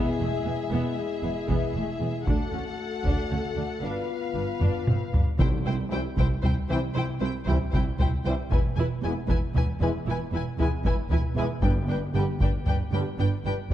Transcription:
Already playing: french horn section G#3 E4, viola section B3, violin section G#4 E5
0.19 double bass section E1, cello section E2, viola section A3
0.45 double bass section E1, cello section E2, viola section B3
0.71 double bass section E1, cello section E2, viola section B3
1.22 double bass section E1, cello section E2, viola section B3
1.49 double bass section E1, cello section E2, viola section B3, taiko
1.75 double bass section E1, cello section E2, viola section A3
1.99 double bass section E1, cello section E2, viola section B3
2.26 cello section D2, double bass section D2, french horn section A3, viola section D4, violin section A4 F#5, taiko
2.52 cello section D2, double bass section D2, viola section C#4
3.04 cello section D2, double bass section D2, viola section D4, taiko
3.30 cello section D2, double bass section D2, viola section C#4
3.56 cello section D2, double bass section D2, viola section D4
3.82 double bass section G1, cello section G2, french horn section B3 F4, viola section D4, violin section B4 F5
4.34 double bass section G1, cello section G2, viola section D4
4.60 double bass section G1, cello section G2, viola section D4, taiko low-mid
4.87 double bass section G1, cello section G2, viola section C4, taiko mid
5.13 double bass section G1, cello section G2, viola section D4, taiko low
5.38 cello section C2, double bass section C2, timpani C3, viola section E4, violin section C5 G5, taiko
5.65 double bass section C2, cello section C2, viola section E4, violin section C5 G5
5.89 double bass section C2, cello section C2, trombone section E3 G3, french horn section C4 E4, viola section E4, violin section C5 G5
6.17 cello section C2, double bass section C2, viola section E4, violin section C5 G5, taiko
6.43 cello section C2, double bass section C2, viola section E4, violin section C5 G5, taiko low
6.68 cello section C2, double bass section C2, trombone section E3 G3, french horn section C4 E4, viola section E4, violin section C5 G5
6.94 cello section C2, double bass section C2, viola section E4, violin section C5 G5
7.19 double bass section C2, cello section C2, viola section E4, violin section C5
7.24 violin section G5
7.46 double bass section C2, cello section C2, trombone section E3 G3, viola section E4, violin section C5 G5, taiko low
7.50 french horn section C4 E4
7.72 double bass section C2, cello section C2, viola section E4, violin section C5 G5, taiko
7.99 cello section C2, double bass section C2, viola section E4, violin section C5 G5, taiko low
8.24 cello section C2, double bass section C2, trombone section E3 G3, french horn section C4 E4, viola section E4, violin section C5 G5
8.51 double bass section E1, cello section E2, viola section E4, violin section B4 G#5, taiko
8.76 double bass section E1, cello section E2, viola section E4, violin section B4 G#5
9.02 double bass section E1, cello section E2, trombone section E3 G#3, french horn section B3 E4, viola section E4, violin section B4 G#5
9.27 double bass section E1, cello section E2, viola section E4, violin section B4 G#5, taiko
9.54 double bass section E1, cello section E2, viola section E4, violin section B4 G#5, taiko low
9.80 double bass section E1, cello section E2, trombone section E3 G#3, french horn section B3 E4, viola section E4, violin section B4 G#5
10.06 double bass section E1, cello section E2, viola section E4, violin section B4 G#5
10.32 double bass section E1, cello section E2, viola section E4, violin section B4 G#5
10.58 double bass section E1, cello section E2, trombone section E3 G#3, french horn section B3 E4, viola section E4, violin section B4 G#5, taiko low
10.84 double bass section E1, cello section E2, viola section E4, violin section B4 G#5, taiko
11.10 double bass section E1, cello section E2, viola section E4, violin section B4 G#5, taiko low
11.35 double bass section E1, cello section E2, trombone section E3 G#3, french horn section B3 E4, viola section E4, violin section B4 G#5
11.62 double bass section G1, cello section G2, timpani G2, viola section D4, violin section B4 G5, taiko
11.88 double bass section G1, cello section G2, viola section D4, violin section B4 G5
12.14 double bass section G1, cello section G2, trombone section D3 G3, french horn section B3 G4, viola section D4, violin section B4 G5
12.40 double bass section G1, cello section G2, viola section D4, violin section B4 G5, taiko
12.65 double bass section G1, cello section G2, viola section D4, violin section B4 G5, taiko low
12.91 double bass section G1, cello section G2, trombone section D3 G3, french horn section B3 G4, viola section D4, violin section B4 G5
13.18 double bass section G1, cello section G2, viola section D4, violin section B4 G5
13.45 double bass section G1, cello section G2, viola section D4, violin section B4 G5
13.70 double bass section G1, cello section G2, trombone section D3 G3, taiko low

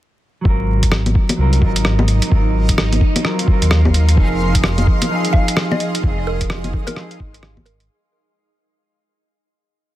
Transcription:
0.41 detuned saw bass G#1, clean electric guitar F#3 C4, synth texture D#4, kick
0.45 clean electric guitar F4 A#4, synth texture D#5
0.83 kick, closed hi-hat
0.92 cross-stick
1.06 closed hi-hat, low bongo
1.15 kick
1.29 closed hi-hat, low bongo
1.37 detuned saw bass C2, clean electric guitar F#3 C4 F4
1.41 clean electric guitar A#4
1.53 closed hi-hat
1.58 clean electric guitar F#3 C4, kick
1.62 detuned saw bass G#1, clean electric guitar F4
1.66 clean electric guitar A#4
1.76 closed hi-hat
1.85 cross-stick
1.99 low bongo
2.08 closed hi-hat
2.22 closed hi-hat
2.27 clean electric guitar F#3 C4, ambient pad F5 C6
2.31 detuned saw bass G#1, clean electric guitar F4, ambient pad A#4, kick
2.35 clean electric guitar A#4
2.69 kick, closed hi-hat
2.78 cross-stick
2.92 closed hi-hat, low bongo
3.01 kick
3.16 closed hi-hat, low bongo
3.22 clean electric guitar F#3 C4 F4, cross-stick
3.26 clean electric guitar A#4
3.39 closed hi-hat
3.44 clean electric guitar F#3 C4, kick
3.49 clean electric guitar F4 A#4
3.62 detuned saw bass D#2, closed hi-hat
3.71 cross-stick
3.85 kick, low bongo
3.94 closed hi-hat
4.09 closed hi-hat
4.13 clean electric guitar F3 C4
4.17 detuned saw bass F1, clean electric guitar D#4, ambient pad G#4 D#5, kick
4.21 clean electric guitar G#4
4.55 kick, closed hi-hat
4.64 cross-stick
4.78 closed hi-hat, low bongo
4.87 kick
5.02 closed hi-hat, low bongo
5.09 clean electric guitar F3 C4 D#4
5.13 clean electric guitar G#4
5.25 closed hi-hat
5.30 clean electric guitar F3 C4, synth pluck F5, kick
5.36 clean electric guitar D#4 G#4
5.48 closed hi-hat
5.57 cross-stick
5.71 synth pluck D#5, low bongo
5.80 closed hi-hat
5.95 closed hi-hat
6.01 detuned saw bass F1, clean electric guitar F3 C4, kick
6.06 clean electric guitar D#4 G#4
6.27 synth pluck A#4
6.41 kick, closed hi-hat
6.50 cross-stick
6.64 closed hi-hat, low bongo
6.73 kick
6.87 synth pluck A#4, closed hi-hat, low bongo
6.95 clean electric guitar F3 C4 D#4 G#4, cross-stick
7.11 closed hi-hat
7.20 detuned saw bass G#1, kick
7.34 closed hi-hat
7.43 cross-stick
7.57 kick, low bongo
7.66 synth pluck A#4, closed hi-hat
7.80 closed hi-hat

